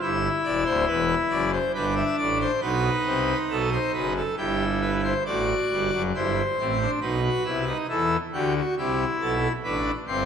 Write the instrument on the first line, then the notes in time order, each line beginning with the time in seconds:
pipe organ
0.01 G1 G2 E4 E5
0.44 E1 E2 D5
0.65 D1 D2 C5
0.87 E1 E2 B4
1.30 F#1 F#2 D5
1.52 C5
1.75 G1 G2 D4 B4
1.96 E5
2.18 A1 A2 D5
2.41 C5
2.61 B1 B2 D#4 B4
3.05 C2 C3
3.50 B1 B2 A4
3.72 C5
3.94 F#1 F#2 B4
4.16 A4
4.37 G1 G2 E4 G4
4.82 B4
5.03 C5
5.26 A1 A2 F#4 D5
5.71 G1 G2
5.93 F#1 F#2
6.15 G1 G2 E4 C5
6.59 A1 A2 C4
6.81 D4
7.01 B1 B2 D#4 B4
7.24 F#4
7.45 C2 C3 E4
7.67 D#4
7.89 E2 E3 E4 A4
8.33 D2 D3 F#4 G4
8.56 F#4
8.78 C2 C3 E4 G4
9.21 B1 B2 A4
9.64 A1 A2 D4 B4
10.07 G1 G2 C4 C5